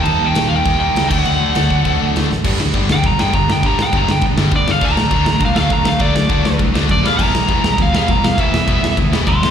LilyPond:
<<
  \new Staff \with { instrumentName = "Lead electric guitar" } { \time 4/4 \key g \major \tempo 4 = 202 a''8. g''8. f''16 g''8. g''4 fis''8~ | fis''2. r4 | r4. g''8 bes''8 g''8 bes''8 g''8 | bes''8 g''8 bes''8 g''8 r4 d''8 f''8 |
bes''2 f''8 f''8 bes''8 f''8 | d''2 r4 d''8 f''8 | bes''2 f''8 f''8 bes''8 f''8 | e''2 r4 <e'' c'''>8 <e'' c'''>8 | }
  \new Staff \with { instrumentName = "Distorted electric guitar" } { \clef bass \time 4/4 \key g \major <ees g bes ees'>2. <ees g bes ees'>8 <d fis a d'>8~ | <d fis a d'>2. <d fis a d'>8 r8 | <g, d g b d'>8 <g, d g b d'>8 <g, d g b d'>8 <g, d g b d'>8 <g, d g b d'>8 <g, d g b d'>8 <g, d g b d'>8 <g, d g b d'>8 | <g, d g b d'>8 <g, d g b d'>8 <g, d g b d'>8 <g, d g b d'>8 <g, d g b d'>8 <g, d g b d'>8 <g, d g b d'>8 <g, d g b d'>8 |
<d fis a d'>8 <d fis a d'>8 <d fis a d'>8 <d fis a d'>8 <d fis a d'>8 <d fis a d'>8 <d fis a d'>8 <d fis a d'>8 | <d fis a d'>8 <d fis a d'>8 <d fis a d'>8 <d fis a d'>8 <d fis a d'>8 <d fis a d'>8 <d fis a d'>8 <e g b e'>8 | <e g b e'>8 <e g b e'>8 <e g b e'>8 <e g b e'>8 <e g b e'>8 <e g b e'>8 <e g b e'>8 <e g b e'>8 | <e g b e'>8 <e g b e'>8 <e g b e'>8 <e g b e'>8 <e g b e'>8 <e g b e'>8 <e g b e'>8 <e g b e'>8 | }
  \new Staff \with { instrumentName = "Distorted electric guitar" } { \clef bass \time 4/4 \key g \major <ees g bes ees'>2.~ <ees g bes ees'>8 <d fis a d'>8~ | <d fis a d'>2.~ <d fis a d'>8 r8 | <g, d g>8 <g, d>8 <g, d g>8 <g, d>8 <g, d>8 <g, d g>8 <g, d>8 <g, d>8 | <g, d g>8 <g, d>8 <g, d g>8 <g, d>8 <g, d>8 <g, d g>8 <g, d>8 <g, d>8 |
<d fis a>8 <d fis>8 <d fis a>8 <d fis>8 <d fis>8 <d fis a>8 <d fis>8 <d fis>8 | <d fis a>8 <d fis>8 <d fis a>8 <d fis>8 <d fis>8 <d fis a>8 <d fis>8 <e g b>8 | <e g b>8 <e g>8 <e g b>8 <e g>8 <e g>8 <e g b>8 <e g>8 <e g>8 | <e g b>8 <e g>8 <e g b>8 <e g>8 <e g>8 <e g b>8 <e g>8 <e g>8 | }
  \new Staff \with { instrumentName = "Distorted electric guitar" } { \clef bass \time 4/4 \key g \major <ees bes ees'>2 <ees bes ees'>8 <ees bes ees'>4 <d a d'>8~ | <d a d'>2 <d a d'>8 <d a d'>4 r8 | <g, d g>8 <g, d>8 <g, d g>8 <g, d>8 <g, d>8 <g, d g>8 <g, d>8 <g, d>8 | <g, d g>8 <g, d>8 <g, d g>8 <g, d>8 <g, d>8 <g, d g>8 <g, d>8 <g, d>8 |
<d a d'>8 <d a>8 <d a d'>8 <d a>8 <d a>8 <d a d'>8 <d a>8 <d a>8 | <d a d'>8 <d a>8 <d a d'>8 <d a>8 <d a>8 <d a d'>8 <d a>8 <e, b, e>8 | <e, b, e>8 <e, b,>8 <e, b, e>8 <e, b,>8 <e, b,>8 <e, b, e>8 <e, b,>8 <e, b,>8 | <e, b, e>8 <e, b,>8 <e, b, e>8 <e, b,>8 <e, b,>8 <e, b, e>8 <e, b,>8 <e, b,>8 | }
  \new Staff \with { instrumentName = "Picked electric bass" } { \clef bass \time 4/4 \key g \major ees,8 ees,8 bes,8 ees,8 ees,4 cis,8 d,8 | d,8 d,8 d,8 d,8 d,8 d,8 d,8 a,,8 | g,,8 d,8 g,,8 d,8 e,,8 g,,8 g,,8 g,,8 | g,,8 g,,8 g,,8 g,,8 e,,8 g,,8 e,,8 g,,8 |
d,8 a,8 d,8 a,,8 c,8 d,8 d,8 d,8 | d,8 d,8 d,8 d,8 c,8 d,8 fis,8 e,,8 | e,,8 b,,8 e,,8 b,,8 d,8 e,,8 e,,8 e,,8 | e,,8 e,,8 e,,8 e,,8 d,8 e,,8 d,8 g,,8 | }
  \new DrumStaff \with { instrumentName = "Drums" } \drummode { \time 4/4 cymc4 <cymc sn>4 <cymc bd>4 <cymc sn>8 <cymc bd>8 | cymc4 <cymc sn>8 bd8 <cymc bd>4 <cymc sn>8 sn8 | <cymc bd>8 sn8 <bd cymr>8 sn8 <bd cymr>8 sn8 <bd cymr>8 sn8 | <bd cymr>8 sn8 <bd cymr>8 sn8 <bd cymr>8 sn8 <bd cymr>8 sn8 |
<cymc bd>8 sn8 <bd cymr>8 sn8 <bd cymr>8 sn8 <bd cymr>8 sn8 | <bd cymr>8 sn8 <bd cymr>8 sn8 <bd cymr>8 sn8 <bd cymr>8 sn8 | <cymc bd>8 sn8 <bd cymr>8 sn8 <bd cymr>8 sn8 <bd cymr>8 sn8 | <bd cymr>8 sn8 <bd cymr>8 sn8 <bd cymr>8 sn8 <bd cymr>8 sn8 | }
>>